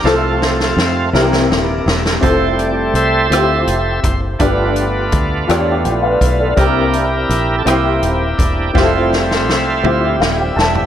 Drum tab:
HH |------------|x-x-x-x-x-x-|x-x-x-x-x-x-|x-x-x-x-x-x-|
SD |o-ooo-ooo-oo|------r-----|------r-----|------r-----|
T2 |------------|------------|------------|------------|
FT |------------|------------|------------|------------|
BD |------------|o---------o-|o---o-----o-|o---------o-|

HH |------------|
SD |o-ooo---o-o-|
T2 |------o-----|
FT |-----------o|
BD |o-----------|